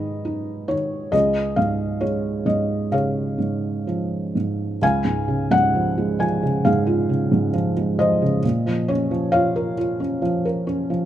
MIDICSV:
0, 0, Header, 1, 2, 480
1, 0, Start_track
1, 0, Tempo, 887574
1, 610, Time_signature, 4, 2, 24, 8
1, 1579, Tempo, 950872
1, 2539, Tempo, 916031
1, 3499, Tempo, 891530
1, 5868, End_track
2, 0, Start_track
2, 0, Title_t, "Felt piano"
2, 0, Program_c, 0, 0
2, 0, Control_c, 0, 64, 127
2, 0, Note_on_c, 0, 44, 47
2, 0, Note_on_c, 0, 51, 40
2, 0, Note_on_c, 0, 68, 54
2, 0, Note_on_c, 0, 71, 55
2, 0, Note_on_c, 0, 75, 73
2, 135, Note_on_c, 0, 63, 43
2, 361, Note_off_c, 0, 51, 0
2, 368, Note_on_c, 0, 73, 58
2, 369, Note_on_c, 0, 51, 37
2, 392, Note_off_c, 0, 75, 0
2, 589, Note_off_c, 0, 44, 0
2, 589, Note_off_c, 0, 71, 0
2, 590, Note_off_c, 0, 68, 0
2, 595, Note_off_c, 0, 63, 0
2, 601, Note_off_c, 0, 51, 0
2, 605, Note_on_c, 0, 75, 69
2, 607, Note_on_c, 0, 37, 47
2, 610, Note_on_c, 0, 68, 51
2, 615, Note_off_c, 0, 73, 0
2, 617, Control_c, 0, 64, 0
2, 711, Control_c, 0, 64, 127
2, 845, Note_on_c, 0, 77, 62
2, 848, Note_on_c, 0, 44, 39
2, 854, Note_off_c, 0, 75, 0
2, 1085, Note_on_c, 0, 73, 52
2, 1088, Note_on_c, 0, 56, 39
2, 1094, Note_off_c, 0, 77, 0
2, 1320, Note_off_c, 0, 44, 0
2, 1328, Note_on_c, 0, 44, 33
2, 1331, Note_on_c, 0, 75, 49
2, 1337, Note_off_c, 0, 73, 0
2, 1558, Note_off_c, 0, 68, 0
2, 1576, Note_on_c, 0, 49, 35
2, 1579, Note_on_c, 0, 77, 53
2, 1586, Note_off_c, 0, 75, 0
2, 1586, Note_on_c, 0, 68, 38
2, 1586, Note_on_c, 0, 73, 43
2, 1805, Note_off_c, 0, 44, 0
2, 1812, Note_on_c, 0, 44, 33
2, 2040, Note_off_c, 0, 56, 0
2, 2060, Note_on_c, 0, 53, 36
2, 2284, Note_off_c, 0, 77, 0
2, 2295, Note_off_c, 0, 44, 0
2, 2303, Note_on_c, 0, 44, 31
2, 2517, Note_off_c, 0, 37, 0
2, 2517, Note_off_c, 0, 49, 0
2, 2522, Note_off_c, 0, 68, 0
2, 2522, Note_off_c, 0, 73, 0
2, 2524, Note_off_c, 0, 53, 0
2, 2531, Note_off_c, 0, 44, 0
2, 2536, Note_on_c, 0, 37, 50
2, 2542, Note_on_c, 0, 77, 59
2, 2543, Note_on_c, 0, 80, 81
2, 2546, Control_c, 0, 64, 0
2, 2638, Control_c, 0, 64, 127
2, 2657, Note_on_c, 0, 44, 38
2, 2780, Note_on_c, 0, 49, 45
2, 2892, Note_off_c, 0, 44, 0
2, 2900, Note_on_c, 0, 44, 39
2, 2902, Note_on_c, 0, 78, 87
2, 2914, Note_off_c, 0, 80, 0
2, 3024, Note_on_c, 0, 53, 44
2, 3144, Note_on_c, 0, 56, 45
2, 3248, Note_off_c, 0, 53, 0
2, 3256, Note_on_c, 0, 53, 43
2, 3261, Note_on_c, 0, 80, 67
2, 3275, Note_off_c, 0, 78, 0
2, 3374, Note_off_c, 0, 49, 0
2, 3382, Note_on_c, 0, 49, 42
2, 3480, Note_off_c, 0, 77, 0
2, 3488, Note_off_c, 0, 44, 0
2, 3496, Note_on_c, 0, 44, 55
2, 3496, Note_on_c, 0, 77, 64
2, 3505, Note_off_c, 0, 80, 0
2, 3507, Note_on_c, 0, 68, 44
2, 3613, Note_on_c, 0, 65, 45
2, 3727, Note_off_c, 0, 49, 0
2, 3735, Note_on_c, 0, 49, 40
2, 3848, Note_off_c, 0, 44, 0
2, 3856, Note_on_c, 0, 44, 46
2, 3956, Note_off_c, 0, 77, 0
2, 3966, Note_off_c, 0, 53, 0
2, 3974, Note_on_c, 0, 53, 49
2, 4078, Note_off_c, 0, 56, 0
2, 4100, Note_on_c, 0, 56, 44
2, 4209, Note_off_c, 0, 53, 0
2, 4217, Note_on_c, 0, 53, 42
2, 4217, Note_on_c, 0, 75, 69
2, 4225, Note_on_c, 0, 72, 53
2, 4333, Note_off_c, 0, 49, 0
2, 4341, Note_on_c, 0, 49, 42
2, 4435, Note_off_c, 0, 65, 0
2, 4437, Note_off_c, 0, 37, 0
2, 4440, Note_off_c, 0, 44, 0
2, 4442, Note_off_c, 0, 68, 0
2, 4449, Note_off_c, 0, 56, 0
2, 4451, Note_off_c, 0, 53, 0
2, 4457, Note_off_c, 0, 49, 0
2, 4461, Note_on_c, 0, 46, 56
2, 4467, Control_c, 0, 64, 0
2, 4573, Control_c, 0, 64, 127
2, 4581, Note_on_c, 0, 53, 42
2, 4700, Note_on_c, 0, 73, 60
2, 4706, Note_on_c, 0, 61, 49
2, 4713, Note_off_c, 0, 75, 0
2, 4814, Note_off_c, 0, 53, 0
2, 4822, Note_on_c, 0, 53, 47
2, 4923, Note_off_c, 0, 73, 0
2, 4934, Note_on_c, 0, 77, 76
2, 4939, Note_on_c, 0, 73, 54
2, 4943, Note_on_c, 0, 65, 52
2, 5063, Note_on_c, 0, 70, 52
2, 5160, Note_off_c, 0, 72, 0
2, 5173, Note_off_c, 0, 65, 0
2, 5181, Note_on_c, 0, 65, 45
2, 5292, Note_off_c, 0, 61, 0
2, 5301, Note_on_c, 0, 61, 41
2, 5411, Note_off_c, 0, 53, 0
2, 5419, Note_on_c, 0, 53, 53
2, 5537, Note_off_c, 0, 70, 0
2, 5545, Note_on_c, 0, 70, 45
2, 5653, Note_off_c, 0, 61, 0
2, 5661, Note_on_c, 0, 61, 46
2, 5777, Note_off_c, 0, 53, 0
2, 5785, Note_on_c, 0, 53, 43
2, 5868, Note_off_c, 0, 46, 0
2, 5868, Note_off_c, 0, 53, 0
2, 5868, Note_off_c, 0, 61, 0
2, 5868, Note_off_c, 0, 65, 0
2, 5868, Note_off_c, 0, 70, 0
2, 5868, Note_off_c, 0, 73, 0
2, 5868, Note_off_c, 0, 77, 0
2, 5868, End_track
0, 0, End_of_file